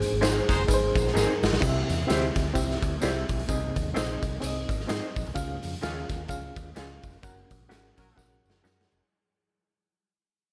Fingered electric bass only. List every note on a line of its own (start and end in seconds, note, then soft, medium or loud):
0.12 0.39 G#1 medium
0.49 0.63 F#1 loud
0.69 0.88 G#1 loud
0.95 1.10 A#1 loud
1.15 1.25 G#1 loud
1.42 1.50 G#1 medium
1.53 1.60 A#1 medium
1.62 1.82 C2 loud
1.89 2.04 E2 medium
2.09 2.29 D2 medium
2.36 2.50 D2 medium
2.55 2.75 C2 medium
2.83 2.97 D2 medium
3.03 3.22 C2 loud
3.29 3.44 B1 loud
3.48 3.68 C2 loud
3.77 3.91 D#2 medium
3.96 4.15 A#1 medium
4.23 4.37 C2 medium
4.43 4.62 C2 medium
4.69 4.84 G#1 medium
4.90 5.00 G#2 loud
5.17 5.24 A#1 medium
5.27 5.34 C2 medium
5.36 5.56 C#2 loud
5.64 5.78 F2 medium
5.83 6.03 D#2 medium
6.10 6.24 D#2 medium
6.29 6.49 C#2 medium
6.57 6.71 D#2 medium
6.77 6.97 C#2 loud
7.04 7.18 F1 medium
7.23 7.43 F#1 medium
7.51 7.65 A#1 loud
7.70 7.90 G#1 medium
7.98 8.12 A#1 loud
8.18 8.37 A#1 medium
8.45 8.59 F#1 medium
8.64 8.84 F#2 loud
8.92 8.99 F1 medium